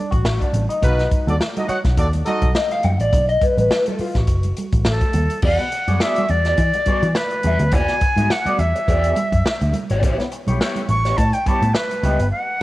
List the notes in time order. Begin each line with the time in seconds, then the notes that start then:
0.11 A1 F#4, kick, closed hi-hat
0.25 A1, snare
0.40 D4, kick, closed hi-hat, muted conga
0.53 A1, closed hi-hat, high conga, low conga
0.69 D#4, closed hi-hat
0.82 B1 B3 D#4 F4 F#4 B4, kick, closed hi-hat, low conga
0.98 D#4, snare, closed hi-hat
1.11 kick, closed hi-hat, high conga
1.27 D#2 D4 F#4 A4 D5, closed hi-hat, high conga
1.40 snare, muted conga
1.56 D#4 F#4 A4 D#5, closed hi-hat, high conga
1.68 F#4 C#5 D#5 F#5, muted picked electric bass stroke, closed hi-hat
1.85 B1, kick, snare, closed hi-hat
1.97 D#2 D4 F#4 A4 D5, kick, closed hi-hat
2.13 closed hi-hat, muted conga
2.26 D#4 F#4 A4 D#5, closed hi-hat, high conga
2.42 B1, kick, closed hi-hat
2.55 D#5, snare, muted conga
2.71 F5, closed hi-hat, muted conga
2.83 F#2 F#5, closed hi-hat, high conga, low conga
2.99 A1 D5, closed hi-hat
3.13 B1, kick, closed hi-hat, low conga
3.29 D#5, closed hi-hat
3.41 B4, kick, closed hi-hat, high conga
3.57 A1 B4, closed hi-hat, high conga
3.71 snare, muted conga
3.86 A4, closed hi-hat, muted conga, high conga
3.99 F4, muted picked electric bass stroke, open hi-hat
4.15 A1 F#4, kick, snare, closed hi-hat
4.27 F#1, kick, closed hi-hat
4.43 closed hi-hat, muted conga
4.57 closed hi-hat, high conga
4.72 A1, kick, closed hi-hat
4.85 A1 A4, snare
5.01 kick, closed hi-hat
5.13 D#2, closed hi-hat, high conga, low conga
5.30 closed hi-hat
5.42 E2 B3 F#4 G#4 D5 F#5, kick, crash, muted conga, low conga
5.59 muted clean electric guitar stroke, closed hi-hat, muted conga
5.72 muted clean electric guitar stroke, closed hi-hat
5.88 F#2 B3 F#4 G#4 D5, closed hi-hat, high conga
6.00 B3 F#4 G#4 D5 E5, snare
6.16 closed hi-hat, muted conga, high conga
6.29 E2 D5, muted clean electric guitar stroke, closed hi-hat
6.45 B3 F#4 G#4 D5, snare, closed hi-hat
6.58 E3, muted clean electric guitar stroke, kick, closed hi-hat
6.73 muted clean electric guitar stroke, closed hi-hat, muted conga
6.86 B3 F#4 G#4 D5, muted picked electric bass stroke, kick, closed hi-hat, high conga
7.03 E3, muted clean electric guitar stroke, closed hi-hat
7.15 B4, muted clean electric guitar stroke, snare, muted conga
7.30 muted clean electric guitar stroke, closed hi-hat
7.43 E2 B3 F#4 G#4 E5, closed hi-hat, high conga, low conga
7.59 D2, muted clean electric guitar stroke, closed hi-hat
7.72 E2 B3 F#4 G#4 D5 G#5, kick, closed hi-hat, muted conga, low conga
7.88 snare, closed hi-hat
8.01 muted clean electric guitar stroke, kick, closed hi-hat
8.16 G#2 B3 F#4 G#4 E5, closed hi-hat, high conga
8.30 F#5, muted clean electric guitar stroke, snare, muted conga
8.46 B3 F#4 G#4 D5, muted picked electric bass stroke, closed hi-hat, muted conga, high conga
8.58 E2 E5, muted clean electric guitar stroke, closed hi-hat
8.75 muted clean electric guitar stroke, closed hi-hat
8.87 E2 B3 F#4 G#4 D5, kick, closed hi-hat, muted conga
9.04 closed hi-hat
9.16 muted clean electric guitar stroke, closed hi-hat, high conga
9.32 F#2, muted clean electric guitar stroke, kick, closed hi-hat
9.45 muted picked electric bass stroke, muted clean electric guitar stroke, snare, muted conga
9.61 D2, muted clean electric guitar stroke, closed hi-hat, muted conga
9.73 closed hi-hat, high conga, low conga
9.90 G#1 B3 F#4 G#4 D5, closed hi-hat
10.01 A1 B3 E4 G4 C#5, kick, closed hi-hat, muted conga, low conga
10.18 muted clean electric guitar stroke, snare, closed hi-hat, muted conga
10.32 muted clean electric guitar stroke, closed hi-hat
10.46 B1 B3 E4 G4 C#5, closed hi-hat, high conga
10.60 B3 E4 G4 C#5, snare
10.76 closed hi-hat, muted conga, high conga
10.89 A1 C#6, muted clean electric guitar stroke, closed hi-hat
11.05 B3 E4 G4 C#5, snare, closed hi-hat
11.16 A2 A5, muted clean electric guitar stroke, kick, closed hi-hat
11.33 G5, muted clean electric guitar stroke, closed hi-hat
11.46 B3 E4 G4 C#5 A5, muted picked electric bass stroke, kick, closed hi-hat, high conga
11.62 A2, muted clean electric guitar stroke, closed hi-hat
11.74 B4, snare
11.91 muted clean electric guitar stroke, closed hi-hat, muted conga
12.03 C#2 B3 E4 G4 D#5, closed hi-hat, high conga, low conga
12.19 G1, muted clean electric guitar stroke, closed hi-hat
12.30 F#5